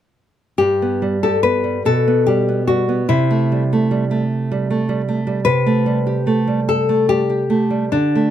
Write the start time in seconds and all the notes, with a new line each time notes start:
0.58 G2 G4
0.82 B3
1.02 G3
1.23 G4 A4
1.43 B3 B4
1.64 G3
1.85 B2 A4
2.08 B3
2.27 G3 G4
2.49 B3
2.67 G3 F#4
2.89 B3
3.09 C3 E4
3.31 A3
3.52 G3
3.73 A3
3.91 G3
4.11 A3
4.52 G3
4.71 A3
4.89 G3
5.09 A3
5.27 G3
5.45 C3 B4
5.66 A3
5.86 G3
6.07 G4
6.27 A3
6.48 G3
6.69 A4
6.89 A3
7.09 G3 G4
7.30 G4
7.50 A3
7.70 G3
7.92 D3 D4
8.15 A3